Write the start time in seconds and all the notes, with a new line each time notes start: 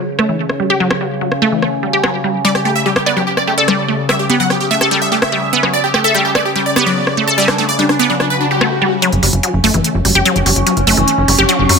Already playing: C#3
0.19 A3, cross-stick
0.29 E3
0.49 cross-stick
0.60 G3
0.70 G4
0.80 F#3
0.91 cross-stick
1.01 G3
1.21 F#3
1.32 cross-stick
1.42 A3
1.52 E3
1.62 cross-stick
1.83 G3
1.93 G4
2.04 F#3, cross-stick
2.24 G3
2.45 G3 D5
2.55 G4, cross-stick
2.65 A3 G4
2.76 E5
2.86 G3 G4
2.96 G4, cross-stick
3.06 B3 D5
3.17 F#3 G4
3.27 G4
3.37 D5, cross-stick
3.47 A3 G4
3.58 A4 D5
3.68 G3, cross-stick
3.88 A3
4.09 G3 E5, cross-stick
4.19 G4
4.30 B3 G4
4.40 F#3 F#5
4.50 G4, cross-stick
4.60 G4
4.71 A3 E5
4.81 G4 A4, cross-stick
4.91 G3 G4
5.02 E5
5.12 A3 G4
5.22 E5, cross-stick
5.32 G3
5.53 B3
5.63 F#3, cross-stick
5.73 D5
5.84 G4
5.94 A3 G4, cross-stick
6.04 A4 E5
6.15 G3 G4
6.25 G4
6.35 A3 D5, cross-stick
6.45 G4
6.56 G3 G4
6.66 D5
6.76 B3 G4, cross-stick
6.86 F#3 D5
7.07 cross-stick
7.17 A3
7.28 A4
7.38 G3 D5
7.48 D4, cross-stick
7.58 A3 D4
7.69 D5
7.79 G3 D4
7.89 D4, cross-stick
7.99 B3 D5
8.10 F#3 D4
8.20 D4, cross-stick, swell
8.30 B4
8.41 D4
8.51 G3 G4
8.61 A3, cross-stick
8.82 G3
9.02 F#3 C#4, closed hi-hat, riser
9.12 F#1, closed hi-hat
9.23 F#1 G3, open hi-hat
9.33 F#1, closed hi-hat
9.43 F#3, closed hi-hat
9.54 F#1
9.64 F#1 A3, open hi-hat
9.74 F#1 E3, closed hi-hat
9.84 closed hi-hat
9.95 F#1
10.05 F#1 G3, open hi-hat
10.15 F#1 G4, closed hi-hat
10.25 F#3, closed hi-hat
10.36 F#1, closed hi-hat
10.46 F#1 G3, open hi-hat
10.56 F#1, closed hi-hat
10.67 F#3, closed hi-hat
10.77 F#1, closed hi-hat
10.87 F#1 A3, open hi-hat
10.97 F#1 E3, closed hi-hat
11.08 closed hi-hat
11.18 F#1
11.28 F#1 G3, open hi-hat
11.38 F#1 G4, closed hi-hat
11.49 F#3, closed hi-hat
11.59 F#1
11.69 F#2 G3, open hi-hat